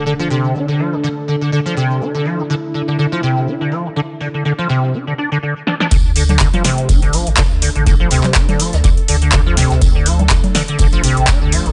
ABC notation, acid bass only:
X:1
M:4/4
L:1/16
Q:"Swing 16ths" 1/4=123
K:Dm
V:1 name="Acid bass" clef=bass
D, F, C,2 D D, F, D, D, z D, D, D, F, C,2 | D D, F, D, D, z D, D, D, F, C,2 D D, F, D, | D, z D, D, D, F, C,2 D D, D D, D, z D D | D, z D, D, D, F, C,2 D D, F, D, D, z D, D, |
D, F, C,2 D D, F, D, D, z D, D, D, F, C,2 | D D, F, D, D, z D, D, D, F, C,2 D D, F, D, |]